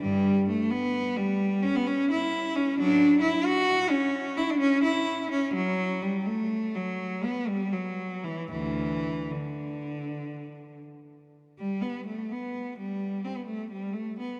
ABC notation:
X:1
M:12/8
L:1/16
Q:3/8=85
K:D
V:1 name="Cello"
[G,,G,]4 A,2 B,4 G,4 C B, C2 E4 C2 | [F,D]4 E2 F4 C4 E D C2 E4 C2 | F,4 G,2 A,4 F,4 B,2 G,2 F,4 E,2 | [D,,E,]6 D,12 z6 |
[K:Bphr] G,2 B,2 A,2 B,4 G,4 C B, A,2 G,2 A,2 B,2 |]